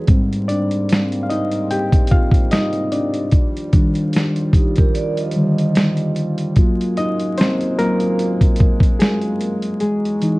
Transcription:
0.00 0.10 E3 medium
0.07 3.29 G#2 medium
0.07 1.26 G#2 medium
0.07 6.53 G3 medium
0.07 1.26 G3 medium
0.07 3.29 A#3 medium
0.07 3.29 C4 medium
0.07 1.26 C4 medium
0.07 kick loud
0.07 closed hi-hat medium
0.33 closed hi-hat soft
0.48 1.20 D4 medium
0.48 1.25 D5 medium
0.48 closed hi-hat medium
0.71 closed hi-hat soft
0.89 snare loud
0.89 closed hi-hat medium
1.12 closed hi-hat soft
1.23 1.29 F5 medium
1.30 1.49 D#4 medium
1.30 1.48 D#5 medium
1.30 closed hi-hat medium
1.51 closed hi-hat medium
1.71 2.09 G4 medium
1.71 2.12 G5 loud
1.71 closed hi-hat medium
1.92 kick medium
1.92 closed hi-hat medium
2.07 closed hi-hat medium
2.11 2.49 F4 medium
2.11 2.53 F5 medium
2.11 kick loud
2.32 kick medium
2.32 closed hi-hat soft
2.51 2.90 D#4 medium
2.51 2.93 D#5 loud
2.51 snare loud
2.51 closed hi-hat medium
2.73 closed hi-hat soft
2.92 3.70 D4 medium
2.92 3.69 D5 medium
2.92 closed hi-hat medium
3.14 closed hi-hat medium
3.31 6.53 D#2 medium
3.31 6.53 F3 medium
3.31 6.53 F4 medium
3.31 kick loud
3.31 closed hi-hat medium
3.57 closed hi-hat soft
3.73 4.91 D#3 medium
3.73 4.91 G3 soft
3.73 4.91 D4 medium
3.73 kick loud
3.73 closed hi-hat medium
3.95 closed hi-hat soft
4.13 snare loud
4.13 closed hi-hat medium
4.36 closed hi-hat soft
4.53 4.76 D#4 medium
4.53 4.75 G4 medium
4.53 kick loud
4.53 closed hi-hat medium
4.76 4.94 G4 medium
4.76 4.94 A#4 medium
4.76 kick medium
4.76 closed hi-hat medium
4.94 5.16 A#4 medium
4.94 5.16 D5 medium
4.94 closed hi-hat medium
5.17 6.35 D#5 medium
5.17 closed hi-hat medium
5.31 closed hi-hat medium
5.36 5.72 D3 medium
5.36 5.72 D#3 soft
5.36 5.72 G3 soft
5.58 closed hi-hat soft
5.75 snare loud
5.75 closed hi-hat medium
5.97 closed hi-hat soft
6.16 closed hi-hat medium
6.38 closed hi-hat medium
6.56 9.77 F#2 medium
6.56 7.75 F#3 medium
6.56 10.39 G#3 medium
6.56 9.77 A#3 medium
6.56 7.75 A#3 medium
6.56 9.77 F4 medium
6.56 7.75 F4 medium
6.56 kick loud
6.56 closed hi-hat medium
6.81 closed hi-hat soft
6.97 7.36 D#4 medium
6.97 7.39 D#5 loud
6.97 closed hi-hat medium
7.19 closed hi-hat soft
7.38 7.76 C4 medium
7.38 7.75 C5 loud
7.38 snare loud
7.38 closed hi-hat medium
7.61 closed hi-hat soft
7.79 8.15 F#3 medium
7.79 8.97 A#3 medium
7.79 8.16 F4 medium
7.79 9.04 A#4 loud
7.79 closed hi-hat medium
8.00 closed hi-hat soft
8.19 closed hi-hat medium
8.41 kick medium
8.41 closed hi-hat medium
8.56 closed hi-hat medium
8.60 kick loud
8.80 kick loud
8.80 closed hi-hat medium
8.99 9.78 G#3 medium
8.99 9.80 G#4 medium
8.99 snare loud
8.99 closed hi-hat medium
9.21 closed hi-hat soft
9.41 closed hi-hat medium
9.62 closed hi-hat soft
9.80 10.39 E2 medium
9.80 10.39 F#3 medium
9.80 10.22 G#3 medium
9.80 10.39 D#4 medium
9.80 10.39 G#4 medium
9.80 closed hi-hat medium
10.05 closed hi-hat soft
10.22 10.39 E3 soft
10.22 10.39 G#3 soft
10.22 10.39 D#4 medium
10.22 closed hi-hat medium

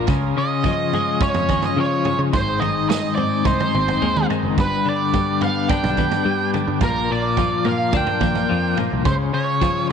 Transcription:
0.00 2.29 F4 medium
0.07 0.32 C#2 medium
0.07 0.36 C#3 medium
0.07 2.30 C#4 medium
0.07 4.53 G#4 medium
0.07 kick loud
0.07 floor tom medium
0.37 1.77 C#3 medium
0.37 1.22 D#5 medium
0.64 1.76 F3 medium
0.64 kick medium
0.64 floor tom medium
0.93 1.48 G#3 medium
0.93 floor tom medium
1.21 2.33 C#4 medium
1.21 1.65 C#5 medium
1.21 kick loud
1.21 floor tom medium
1.34 1.58 F2 medium
1.34 floor tom medium
1.49 2.33 G#3 medium
1.49 kick medium
1.49 floor tom medium
1.49 mid tom medium
1.62 1.79 D#5 medium
1.62 floor tom medium
1.77 2.12 C#3 medium
1.77 2.33 F3 medium
1.77 2.18 C#5 medium
2.05 2.33 C#3 medium
2.05 floor tom medium
2.19 2.31 C#3 medium
2.33 3.03 G#1 medium
2.33 3.73 G#2 medium
2.33 4.56 C4 medium
2.33 4.56 D#4 medium
2.33 2.59 C5 medium
2.33 kick medium
2.33 floor tom medium
2.60 4.01 D#3 medium
2.60 2.86 D#5 medium
2.60 floor tom medium
2.89 4.01 G#3 medium
2.89 3.15 D#5 medium
2.89 snare medium
2.89 floor tom medium
3.15 3.41 G#2 medium
3.15 3.74 C4 medium
3.15 3.45 D5 medium
3.15 floor tom medium
3.45 3.57 C2 medium
3.45 4.58 D#4 medium
3.45 4.25 C5 medium
3.45 kick loud
3.45 floor tom medium
3.60 floor tom medium
3.60 mid tom medium
3.74 3.97 G#1 medium
3.74 4.58 C4 medium
3.74 mid tom medium
3.88 floor tom medium
4.02 4.25 D#2 medium
4.02 4.58 G#3 medium
4.02 mid tom medium
4.16 mid tom medium
4.30 4.58 D#3 medium
4.30 floor tom medium
4.43 4.55 F#1 medium
4.57 4.81 G1 medium
4.57 5.98 G2 medium
4.57 6.80 B3 medium
4.57 9.03 D4 medium
4.57 6.80 G4 medium
4.57 4.88 B4 medium
4.57 kick medium
4.57 floor tom medium
4.85 6.26 D3 medium
4.85 5.42 D5 medium
5.14 6.24 G3 medium
5.14 kick medium
5.14 floor tom medium
5.41 5.97 B3 medium
5.41 5.68 F5 medium
5.41 floor tom medium
5.69 6.82 D4 medium
5.69 6.50 G5 medium
5.69 kick loud
5.69 floor tom medium
5.84 6.07 B1 medium
5.84 floor tom medium
5.97 6.82 B3 medium
5.97 kick medium
5.97 floor tom medium
5.97 mid tom medium
6.12 floor tom medium
6.25 6.60 G2 medium
6.25 6.82 G3 medium
6.54 6.82 D3 medium
6.54 floor tom medium
6.68 6.79 G2 medium
6.80 7.51 A#1 medium
6.80 7.10 A#2 medium
6.80 9.03 A#3 medium
6.80 9.92 F4 medium
6.80 7.09 A#4 medium
6.80 kick medium
6.80 floor tom medium
7.11 8.51 A#2 medium
7.11 7.68 D5 medium
7.37 8.48 F3 medium
7.37 kick medium
7.37 floor tom medium
7.65 7.89 A#2 medium
7.65 8.20 A#3 medium
7.65 7.96 F5 medium
7.65 floor tom medium
7.92 8.05 D2 loud
7.92 9.06 D4 medium
7.92 kick loud
7.92 floor tom medium
7.97 8.75 G5 medium
8.07 floor tom medium
8.21 8.45 A#1 medium
8.21 9.06 A#3 medium
8.21 kick medium
8.21 floor tom medium
8.21 mid tom medium
8.35 floor tom medium
8.49 8.74 F2 medium
8.49 9.06 F3 medium
8.77 9.05 A#2 medium
8.77 floor tom medium
8.92 9.04 C2 medium
9.05 9.29 C#2 medium
9.05 9.32 C#3 medium
9.05 9.92 G#3 medium
9.05 9.92 C#4 medium
9.05 9.14 C5 medium
9.05 kick medium
9.05 floor tom medium
9.33 9.92 C#3 medium
9.33 9.86 C#5 medium
9.61 9.92 F3 medium
9.61 kick medium
9.61 floor tom medium

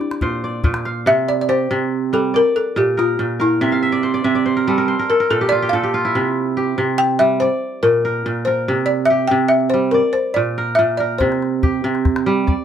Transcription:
0.00 0.60 D4 medium
0.00 0.36 G4 medium
0.00 0.43 D5 medium
0.00 calabash click soft
0.11 calabash click soft
0.21 0.63 A#2 medium
0.21 1.41 C5 medium
0.21 calabash thump medium
0.44 1.55 D5 medium
0.64 1.12 A#2 medium
0.64 calabash thump medium
0.74 calabash click soft
0.85 1.85 F5 medium
0.85 calabash click soft
1.06 1.69 C3 medium
1.06 1.27 E5 loud
1.29 1.40 D5 loud
1.41 1.49 D5 medium
1.49 2.90 G4 medium
1.49 2.09 C5 medium
1.71 2.39 C3 medium
2.13 2.39 G3 medium
2.13 2.35 A4 medium
2.34 2.55 A#4 medium
2.34 3.45 D5 medium
2.56 2.75 A4 medium
2.76 3.18 A#2 medium
2.76 2.99 G4 medium
2.97 3.42 F4 medium
2.97 3.39 A#4 medium
3.19 3.66 A#2 medium
3.40 4.00 E4 medium
3.40 4.56 A#4 medium
3.61 4.23 C3 medium
3.61 3.82 E5 medium
3.72 4.30 F5 medium
3.83 4.24 E5 medium
3.92 4.13 D5 medium
4.03 4.45 C5 medium
4.14 4.35 D5 medium
4.24 4.93 C3 medium
4.24 5.28 E5 medium
4.35 5.46 D5 medium
4.46 4.88 C5 medium
4.57 4.77 A#4 medium
4.67 4.93 G3 medium
4.67 5.05 A4 medium
4.78 4.99 A#4 medium
4.88 6.07 C5 medium
4.99 5.20 A#4 medium
5.10 5.30 A4 medium
5.10 5.31 A#4 medium
5.20 5.79 A#4 medium
5.30 5.72 A#2 medium
5.30 5.52 A4 medium
5.30 5.73 A4 medium
5.41 5.62 G4 medium
5.49 5.94 F4 medium
5.49 5.59 D5 medium
5.62 5.83 G4 medium
5.69 6.19 A#2 medium
5.69 7.05 A4 medium
5.69 5.90 F5 medium
5.83 6.56 G4 medium
5.94 7.45 F4 medium
6.05 7.61 E4 medium
6.15 6.77 C3 medium
6.57 7.98 G4 medium
6.78 7.46 C3 medium
6.98 7.20 G5 loud
7.19 7.46 G3 medium
7.19 7.39 E5 medium
7.40 7.84 C5 medium
7.40 8.52 D5 medium
7.83 8.25 A#2 medium
7.83 8.42 A#4 medium
8.05 8.47 A#4 medium
8.26 8.73 A#2 medium
8.45 9.74 A#4 medium
8.45 8.65 C5 medium
8.68 9.30 C3 medium
8.86 9.09 D5 medium
9.05 9.29 E5 medium
9.10 10.51 G4 medium
9.28 9.99 C3 medium
9.28 9.51 G5 medium
9.48 9.70 E5 medium
9.70 9.93 C5 medium
9.74 9.99 G3 medium
9.91 10.15 A#4 medium
9.91 11.05 D5 medium
10.13 10.36 C5 medium
10.34 10.78 A#2 medium
10.34 10.55 D5 medium
10.58 11.00 A#4 medium
10.75 11.26 A#2 medium
10.75 10.99 E5 medium
10.97 12.27 A#4 medium
10.97 11.20 D5 medium
11.18 11.83 C3 medium
11.18 11.59 C5 medium
11.18 calabash thump medium
11.18 calabash click soft
11.32 calabash click soft
11.42 calabash click soft
11.63 12.65 G4 medium
11.63 calabash thump medium
11.84 12.52 C3 medium
11.95 calabash click soft
12.05 calabash thump medium
12.05 calabash click soft
12.16 calabash click soft
12.26 12.52 G3 medium
12.47 12.65 D5 medium
12.47 calabash thump medium

